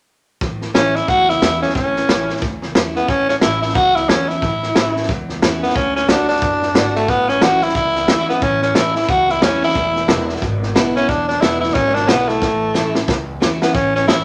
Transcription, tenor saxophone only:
0, 0, Header, 1, 2, 480
1, 0, Start_track
1, 0, Key_signature, 3, "major"
1, 0, Tempo, 333333
1, 590, Time_signature, 4, 2, 24, 8
1, 20511, End_track
2, 0, Start_track
2, 0, Title_t, "Tenor saxophone"
2, 0, Program_c, 0, 66
2, 1075, Note_on_c, 0, 61, 91
2, 1378, Note_on_c, 0, 64, 97
2, 1400, Note_off_c, 0, 61, 0
2, 1564, Note_on_c, 0, 66, 108
2, 1585, Note_off_c, 0, 64, 0
2, 1860, Note_on_c, 0, 64, 110
2, 1882, Note_off_c, 0, 66, 0
2, 2328, Note_off_c, 0, 64, 0
2, 2337, Note_on_c, 0, 61, 82
2, 2508, Note_off_c, 0, 61, 0
2, 2519, Note_on_c, 0, 61, 83
2, 3421, Note_off_c, 0, 61, 0
2, 4264, Note_on_c, 0, 59, 86
2, 4452, Note_on_c, 0, 61, 94
2, 4474, Note_off_c, 0, 59, 0
2, 4731, Note_off_c, 0, 61, 0
2, 4740, Note_on_c, 0, 61, 85
2, 4823, Note_off_c, 0, 61, 0
2, 4930, Note_on_c, 0, 64, 98
2, 5195, Note_off_c, 0, 64, 0
2, 5211, Note_on_c, 0, 64, 93
2, 5396, Note_on_c, 0, 66, 106
2, 5418, Note_off_c, 0, 64, 0
2, 5687, Note_on_c, 0, 64, 97
2, 5709, Note_off_c, 0, 66, 0
2, 5889, Note_on_c, 0, 61, 85
2, 5910, Note_off_c, 0, 64, 0
2, 6171, Note_on_c, 0, 64, 95
2, 6192, Note_off_c, 0, 61, 0
2, 7131, Note_off_c, 0, 64, 0
2, 8104, Note_on_c, 0, 59, 85
2, 8291, Note_on_c, 0, 61, 95
2, 8312, Note_off_c, 0, 59, 0
2, 8576, Note_off_c, 0, 61, 0
2, 8582, Note_on_c, 0, 61, 86
2, 8764, Note_on_c, 0, 62, 100
2, 8786, Note_off_c, 0, 61, 0
2, 9044, Note_off_c, 0, 62, 0
2, 9053, Note_on_c, 0, 62, 98
2, 9954, Note_off_c, 0, 62, 0
2, 10021, Note_on_c, 0, 57, 94
2, 10213, Note_on_c, 0, 59, 101
2, 10235, Note_off_c, 0, 57, 0
2, 10494, Note_on_c, 0, 61, 93
2, 10516, Note_off_c, 0, 59, 0
2, 10697, Note_on_c, 0, 66, 105
2, 10718, Note_off_c, 0, 61, 0
2, 10978, Note_on_c, 0, 64, 95
2, 10999, Note_off_c, 0, 66, 0
2, 11164, Note_off_c, 0, 64, 0
2, 11180, Note_on_c, 0, 64, 101
2, 11887, Note_off_c, 0, 64, 0
2, 11939, Note_on_c, 0, 59, 89
2, 12128, Note_on_c, 0, 61, 101
2, 12149, Note_off_c, 0, 59, 0
2, 12414, Note_off_c, 0, 61, 0
2, 12424, Note_on_c, 0, 61, 85
2, 12610, Note_on_c, 0, 64, 97
2, 12632, Note_off_c, 0, 61, 0
2, 12895, Note_off_c, 0, 64, 0
2, 12903, Note_on_c, 0, 64, 90
2, 13098, Note_on_c, 0, 66, 99
2, 13119, Note_off_c, 0, 64, 0
2, 13400, Note_on_c, 0, 64, 94
2, 13421, Note_off_c, 0, 66, 0
2, 13588, Note_on_c, 0, 61, 85
2, 13610, Note_off_c, 0, 64, 0
2, 13863, Note_off_c, 0, 61, 0
2, 13886, Note_on_c, 0, 64, 91
2, 14769, Note_off_c, 0, 64, 0
2, 15782, Note_on_c, 0, 61, 95
2, 15961, Note_on_c, 0, 62, 100
2, 15983, Note_off_c, 0, 61, 0
2, 16240, Note_off_c, 0, 62, 0
2, 16248, Note_on_c, 0, 62, 96
2, 16428, Note_on_c, 0, 64, 105
2, 16450, Note_off_c, 0, 62, 0
2, 16704, Note_off_c, 0, 64, 0
2, 16713, Note_on_c, 0, 64, 94
2, 16904, Note_on_c, 0, 61, 102
2, 16926, Note_off_c, 0, 64, 0
2, 17193, Note_on_c, 0, 62, 106
2, 17215, Note_off_c, 0, 61, 0
2, 17393, Note_on_c, 0, 59, 92
2, 17415, Note_off_c, 0, 62, 0
2, 17684, Note_on_c, 0, 57, 86
2, 17705, Note_off_c, 0, 59, 0
2, 18641, Note_off_c, 0, 57, 0
2, 19617, Note_on_c, 0, 59, 85
2, 19788, Note_on_c, 0, 61, 98
2, 19809, Note_off_c, 0, 59, 0
2, 20078, Note_off_c, 0, 61, 0
2, 20092, Note_on_c, 0, 61, 84
2, 20261, Note_off_c, 0, 61, 0
2, 20270, Note_on_c, 0, 64, 99
2, 20511, Note_off_c, 0, 64, 0
2, 20511, End_track
0, 0, End_of_file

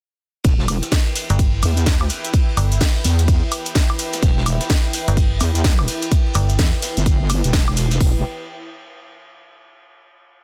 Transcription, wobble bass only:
0, 0, Header, 1, 2, 480
1, 0, Start_track
1, 0, Key_signature, 1, "minor"
1, 0, Tempo, 472441
1, 453, Time_signature, 4, 2, 24, 8
1, 10605, End_track
2, 0, Start_track
2, 0, Title_t, "Wobble bass"
2, 0, Program_c, 0, 39
2, 453, Note_on_c, 0, 28, 100
2, 817, Note_off_c, 0, 28, 0
2, 1654, Note_on_c, 0, 40, 92
2, 2119, Note_off_c, 0, 40, 0
2, 3094, Note_on_c, 0, 40, 102
2, 3458, Note_off_c, 0, 40, 0
2, 4293, Note_on_c, 0, 28, 101
2, 4657, Note_off_c, 0, 28, 0
2, 5494, Note_on_c, 0, 40, 91
2, 5959, Note_off_c, 0, 40, 0
2, 7081, Note_on_c, 0, 31, 101
2, 7538, Note_off_c, 0, 31, 0
2, 7561, Note_on_c, 0, 28, 105
2, 7777, Note_off_c, 0, 28, 0
2, 7801, Note_on_c, 0, 28, 97
2, 8119, Note_off_c, 0, 28, 0
2, 8134, Note_on_c, 0, 28, 107
2, 8357, Note_off_c, 0, 28, 0
2, 10605, End_track
0, 0, End_of_file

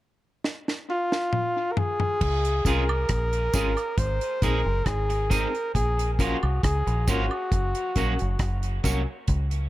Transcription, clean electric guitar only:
0, 0, Header, 1, 3, 480
1, 0, Start_track
1, 0, Key_signature, -5, "major"
1, 0, Tempo, 883652
1, 1202, Time_signature, 4, 2, 24, 8
1, 5265, End_track
2, 0, Start_track
2, 0, Title_t, "Clean electric guitar"
2, 0, Program_c, 0, 27
2, 1447, Note_on_c, 0, 56, 76
2, 1449, Note_on_c, 0, 61, 82
2, 1452, Note_on_c, 0, 65, 81
2, 1455, Note_on_c, 0, 68, 87
2, 1534, Note_off_c, 0, 56, 0
2, 1535, Note_off_c, 0, 61, 0
2, 1537, Note_off_c, 0, 65, 0
2, 1538, Note_off_c, 0, 68, 0
2, 1925, Note_on_c, 0, 56, 66
2, 1927, Note_on_c, 0, 61, 68
2, 1931, Note_on_c, 0, 65, 78
2, 1932, Note_on_c, 0, 68, 76
2, 2013, Note_off_c, 0, 56, 0
2, 2014, Note_off_c, 0, 61, 0
2, 2016, Note_off_c, 0, 65, 0
2, 2017, Note_off_c, 0, 68, 0
2, 2406, Note_on_c, 0, 56, 70
2, 2408, Note_on_c, 0, 60, 69
2, 2410, Note_on_c, 0, 63, 71
2, 2412, Note_on_c, 0, 68, 84
2, 2494, Note_off_c, 0, 56, 0
2, 2495, Note_off_c, 0, 60, 0
2, 2496, Note_off_c, 0, 63, 0
2, 2497, Note_off_c, 0, 68, 0
2, 2879, Note_on_c, 0, 56, 83
2, 2883, Note_on_c, 0, 60, 78
2, 2885, Note_on_c, 0, 63, 82
2, 2885, Note_on_c, 0, 68, 81
2, 2970, Note_off_c, 0, 56, 0
2, 2972, Note_off_c, 0, 60, 0
2, 2973, Note_off_c, 0, 68, 0
2, 2974, Note_off_c, 0, 63, 0
2, 3366, Note_on_c, 0, 53, 88
2, 3368, Note_on_c, 0, 58, 79
2, 3371, Note_on_c, 0, 61, 84
2, 3372, Note_on_c, 0, 65, 88
2, 3454, Note_off_c, 0, 53, 0
2, 3455, Note_off_c, 0, 58, 0
2, 3457, Note_off_c, 0, 61, 0
2, 3457, Note_off_c, 0, 65, 0
2, 3845, Note_on_c, 0, 53, 77
2, 3849, Note_on_c, 0, 58, 86
2, 3851, Note_on_c, 0, 61, 95
2, 3853, Note_on_c, 0, 65, 92
2, 3934, Note_off_c, 0, 53, 0
2, 3936, Note_off_c, 0, 58, 0
2, 3936, Note_off_c, 0, 61, 0
2, 3938, Note_off_c, 0, 65, 0
2, 4326, Note_on_c, 0, 54, 73
2, 4329, Note_on_c, 0, 58, 73
2, 4332, Note_on_c, 0, 61, 81
2, 4333, Note_on_c, 0, 66, 78
2, 4414, Note_off_c, 0, 54, 0
2, 4416, Note_off_c, 0, 58, 0
2, 4417, Note_off_c, 0, 61, 0
2, 4418, Note_off_c, 0, 66, 0
2, 4801, Note_on_c, 0, 54, 74
2, 4804, Note_on_c, 0, 58, 78
2, 4808, Note_on_c, 0, 61, 81
2, 4811, Note_on_c, 0, 66, 76
2, 4892, Note_off_c, 0, 54, 0
2, 4893, Note_off_c, 0, 58, 0
2, 4895, Note_off_c, 0, 61, 0
2, 4897, Note_off_c, 0, 66, 0
2, 5265, End_track
3, 0, Start_track
3, 0, Title_t, "Muted clean electric guitar strokes"
3, 2769, Note_on_c, 9, 29, 53
3, 2823, Note_off_c, 9, 29, 0
3, 5265, End_track
0, 0, End_of_file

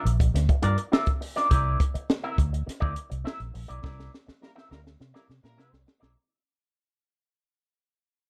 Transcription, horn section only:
0, 0, Header, 1, 2, 480
1, 0, Start_track
1, 0, Tempo, 581790
1, 1244, Time_signature, 4, 2, 24, 8
1, 6844, End_track
2, 0, Start_track
2, 0, Title_t, "Horn section"
2, 0, Program_c, 0, 61
2, 3643, Note_on_c, 0, 55, 71
2, 3646, Note_on_c, 0, 58, 74
2, 3646, Note_on_c, 0, 64, 75
2, 3646, Note_on_c, 0, 70, 80
2, 3720, Note_off_c, 0, 55, 0
2, 3722, Note_off_c, 0, 58, 0
2, 3722, Note_off_c, 0, 64, 0
2, 3722, Note_off_c, 0, 70, 0
2, 3880, Note_on_c, 0, 55, 76
2, 3880, Note_on_c, 0, 58, 73
2, 3880, Note_on_c, 0, 70, 79
2, 3883, Note_on_c, 0, 64, 74
2, 3958, Note_off_c, 0, 55, 0
2, 3958, Note_off_c, 0, 58, 0
2, 3958, Note_off_c, 0, 70, 0
2, 3960, Note_off_c, 0, 64, 0
2, 4244, Note_on_c, 0, 64, 68
2, 4246, Note_on_c, 0, 55, 70
2, 4246, Note_on_c, 0, 58, 72
2, 4246, Note_on_c, 0, 70, 78
2, 4320, Note_off_c, 0, 64, 0
2, 4322, Note_off_c, 0, 55, 0
2, 4322, Note_off_c, 0, 58, 0
2, 4322, Note_off_c, 0, 70, 0
2, 4489, Note_on_c, 0, 58, 98
2, 4489, Note_on_c, 0, 70, 106
2, 4490, Note_on_c, 0, 55, 83
2, 4490, Note_on_c, 0, 64, 88
2, 4793, Note_off_c, 0, 58, 0
2, 4793, Note_off_c, 0, 64, 0
2, 4793, Note_off_c, 0, 70, 0
2, 4794, Note_off_c, 0, 55, 0
2, 6844, End_track
0, 0, End_of_file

